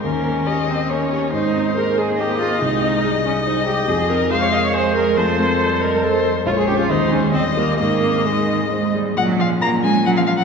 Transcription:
<<
  \new Staff \with { instrumentName = "Violin" } { \time 3/4 \key aes \major \tempo 4 = 139 bes'4 ees''4 des''4 | c''2 ees''4~ | ees''2.~ | ees''4 f''4 aes'4 |
a'2 c''4 | des''4 c''4 ees''4 | ees''2~ ees''8 r8 | \key bes \minor ges''8 f''8 bes''8 aes''8 ges''16 f''16 f''16 ges''16 | }
  \new Staff \with { instrumentName = "Grand piano" } { \time 3/4 \key aes \major ees,8 bes8 g'8 ees''8 bes'8 g'8 | aes,8 c'8 aes'8 ees''8 c''8 aes'8 | c,8 c'8 aes'8 ees''8 c''8 aes'8 | f,8 c'8 aes'8 ees''8 c''8 aes'8 |
f,8 c'8 a'8 ees''8 c''8 a'8 | bes,,8 <des' aes'>8 ees,8 <ees' aes'>8 ees,8 <ees' g'>8 | aes,8 c'8 aes'8 ees''8 c''8 aes'8 | \key bes \minor bes,8 f8 bes8 des'8 f'8 des'8 | }
  \new Staff \with { instrumentName = "Viola" } { \time 3/4 \key aes \major des'4. c'8 des'4 | ees'4 bes'8 aes'8 g'8 f'8 | ees'4. des'8 ees'8 g'8 | aes'8 bes'8 c''16 des''16 ees''16 des''16 c''8 bes'8 |
c''4. bes'8 a'8 r8 | f'16 aes'16 g'16 f'16 ees'8 des'8 c'8 bes8 | bes4 aes4 r4 | \key bes \minor des'2. | }
  \new Staff \with { instrumentName = "Cello" } { \clef bass \time 3/4 \key aes \major bes4 bes2 | aes4 bes2 | aes4 g2 | f4 aes2 |
a8 a8 g4 f4 | aes4 aes4 g4 | ees4 ees4 aes8 g8 | \key bes \minor ges8 f8 bes8 aes8 ges16 f16 f16 ges16 | }
>>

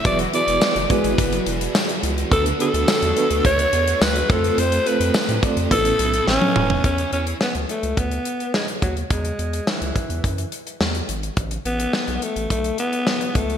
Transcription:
<<
  \new Staff \with { instrumentName = "FM electric piano" } { \time 4/4 \key e \mixolydian \tempo 4 = 106 <b e' fis' gis' b'>8 <b e' fis' gis' b'>8 r8 <b e' fis' gis' d''>4~ <b e' fis' gis' d''>16 r4 r16 | <b d' fis' a' b'>8 <b d' fis' a' b'>8 r8 <b d' fis' a' b'>4~ <b d' fis' a' b'>16 r8. <a c' f' a' c''>8~ | <a c' f' a' c''>8 <a c' f' a'>8 r8 <a c' f' a' d''>8 <b c' e' a' b'>4. r8 | r1 |
r1 | r1 | }
  \new Staff \with { instrumentName = "FM electric piano" } { \clef bass \time 4/4 \key e \mixolydian e4. r2 r8 | d4. r2 r8 | r2 a,4. r8 | r1 |
r1 | r1 | }
  \new Staff \with { instrumentName = "Analog polysynth" } { \time 4/4 \key e \mixolydian <fis fis'>8 r16 <gis gis'>16 <b b'>16 r16 <gis gis'>8 r16 <fis fis'>16 <e e'>16 r4 r16 | r1 | r1 | r1 |
r1 | r1 | }
  \new Staff \with { instrumentName = "Alto saxophone" } { \time 4/4 \key e \mixolydian d''8 d''4 b'4 r4. | a'8 a'4. cis''4 b'8 a'8 | c''8 b'4 r8 a'4 cis'4 | cis'8 cis'8 b8 a8 b4 gis8 fis8 |
gis4 e4. r4. | r8 b4 a8 a8 b4 a8 | }
  \new Staff \with { instrumentName = "Distorted electric guitar" } { \clef bass \time 4/4 \key e \mixolydian <e, b, e>8 <b, e>8 <e, b, e>4 <e, b, e>2 | <d a d'>4 <d a d'>4 <d a d'>4. <f, c f>8~ | <f, c f>4 <f, c f>4 <a, e a>2 | r1 |
r1 | r1 | }
  \new Staff \with { instrumentName = "Analog synth bass" } { \clef bass \time 4/4 \key e \mixolydian e,,8 r16 e,,16 r16 fis,,16 r16 gis,,16 fis,,8 e,,8 r8 cis,8 | d,8 r16 d,16 r16 e,16 r16 d,16 d,8 e,8 d,8 f,8 | f,8 r16 f,16 r16 a,16 r16 f,16 a,,8 b,,8 a,,16 r16 dis,,8 | e,8 e,8 r16 d,16 r16 cis,16 d,8 r4 dis,8 |
e,8 e,8 r16 cis,16 r16 e,16 fis,8 r8 e,8 gis,,8 | a,,8 a,,8 r16 b,,16 r16 a,,16 b,,8 r4 cis,8 | }
  \new DrumStaff \with { instrumentName = "Drums" } \drummode { \time 4/4 <hh bd>16 hh16 hh16 hh16 <sn tamb>16 hh16 <hh bd>16 hh16 <hh bd>16 hh16 hh16 hh16 <sn tamb>16 hh16 hh16 hh16 | <hh bd>16 hh16 hh16 hh16 <sn tamb>16 hh16 hh16 hh16 <hh bd>16 hh16 hh16 hh16 <sn tamb>16 hh16 <hh bd>16 hh16 | hh16 hh16 hh16 hh16 <sn tamb>16 hh16 <hh bd>16 hh16 <hh bd>16 hh16 hh16 hh16 sn16 tommh16 toml16 tomfh16 | <hh bd>16 hh16 hh16 hh16 sn16 hh16 hh16 hh16 <hh bd>16 hh16 hh16 hh16 sn16 hh16 <hh bd>16 hh16 |
<hh bd>16 hh16 hh16 hh16 sn16 hh16 <hh bd>16 hh16 <hh bd>16 hh16 hh16 hh16 sn16 hh16 hh16 hh16 | <hh bd>16 hh16 hh16 hh16 sn16 hh16 hh16 hh16 <hh bd>16 hh16 hh16 hh16 sn16 hh16 <hh bd>16 hh16 | }
>>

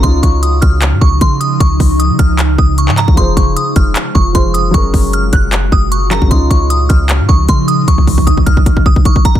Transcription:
<<
  \new Staff \with { instrumentName = "Synth bell" } { \time 4/4 \key des \major \tempo 4 = 153 c'''8 des'''8 ees'''8 f'''8 r8 des'''8 c'''8 ees'''8 | des'''4 ees'''8 f'''8 r8 ees'''8 des'''8 bes''8 | c'''8 des'''8 ees'''8 f'''8 r8 des'''8 c'''8 ees'''8 | des'''4 f'''8 ges'''8 r8 ees'''8 des'''8 bes''8 |
c'''8 des'''8 ees'''8 f'''8 r8 des'''8 c'''8 ees'''8 | des'''4 ees'''8 f'''8 r8 ees'''8 des'''8 bes''8 | }
  \new Staff \with { instrumentName = "Grand piano" } { \time 4/4 \key des \major <des des' ees' f'>1~ | <des des' ees' f'>1 | <f f' aes' c''>2. <f f' aes' c''>4 | <ges des' aes' bes'>2.~ <ges des' aes' bes'>8 <ges des' aes' bes'>8 |
<des des' ees' f'>1~ | <des des' ees' f'>1 | }
  \new Staff \with { instrumentName = "Ambient pad" } { \clef bass \time 4/4 \key des \major << { <des ees'>1~ | <des ees'>1 | <c f'>1 | <bes, ges'>1 |
<des ees'>1~ | <des ees'>1 | } \\ { f1~ | f1 | aes1~ | aes1 |
f1~ | f1 | } >> }
  \new Staff \with { instrumentName = "808-style bass" } { \clef bass \time 4/4 \key des \major des,8 des,4 des,8. aes,16 des,8 des4 | des,8 des,8. des16 des,4 des,8. aes,8 des,16 | f,,8 f,,8 r8 f,,8 r8 f,,8 f,,4 | ges,,8 ges,,4 ges,,4 ges,,4~ ges,,16 ges,,16 |
des,8 des,4 des,8. aes,16 des,8 des4 | des,2. r4 | }
  \new DrumStaff \with { instrumentName = "Drums" } \drummode { \time 4/4 <hh bd>8 <hh bd>8 hh8 <hh bd>8 <hc hh>8 bd8 <hh bd>8 hh8 | <hh bd>8 <hho bd>8 hh8 <hh bd>8 <hc hh>8 bd8 hh16 hc16 <hc hh>16 bd16 | <hh bd>8 <hh bd>8 hh8 <hh bd>8 <hc hh>8 bd8 <hh bd>8 hh8 | <hh bd>8 <hho bd>8 hh8 <hh bd>8 <hc hh>8 bd8 hh8 <hc hh>16 bd16 |
<hh bd>8 <hh bd>8 hh8 <hh bd>8 <hc hh>8 bd8 <hh bd>8 hh8 | <hh bd>16 bd16 <hho bd>16 bd16 <hh bd>16 bd16 <hh bd>16 bd16 <hh bd>16 bd16 bd16 bd16 <hh bd>16 bd16 <hh bd>16 bd16 | }
>>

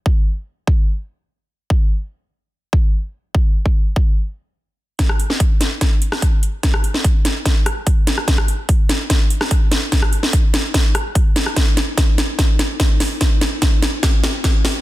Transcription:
\new DrumStaff \with { instrumentName = "Drums" } \drummode { \time 4/4 \tempo 4 = 146 bd4 r8 bd8 r4 r4 | bd4 r4 r8 bd8 r4 | bd8. bd16 r8 bd8 r4 r4 | <hh bd sn>16 ss16 hh16 sn16 <hh bd>8 <hh sn>8 <hh bd sn>8 hh16 <ss sn>16 <hh bd>8 hh8 |
<hh bd sn>16 ss16 hh16 sn16 <hh bd>8 <hh sn>8 <hh bd sn>8 <hh ss>8 <hh bd>8 <hh sn>16 ss16 | <hh bd sn>16 ss16 hh8 <hh bd>8 <hh sn>8 <hh bd sn>8 hh16 <ss sn>16 <hh bd>8 <hh sn>8 | <hh bd sn>16 ss16 hh16 sn16 <hh bd>8 <hh sn>8 <hh bd sn>8 <hh ss>8 <hh bd>8 <hh sn>16 ss16 | <hh bd sn>8 <hh sn>8 <hh bd sn>8 <hh sn>8 <hh bd sn>8 <hh sn>8 <hh bd sn>8 <hho sn>8 |
<hh bd sn>8 <hh sn>8 <hh bd sn>8 <hh sn>8 <hh bd sn>8 <hh sn>8 <hh bd sn>8 <hho sn>8 | }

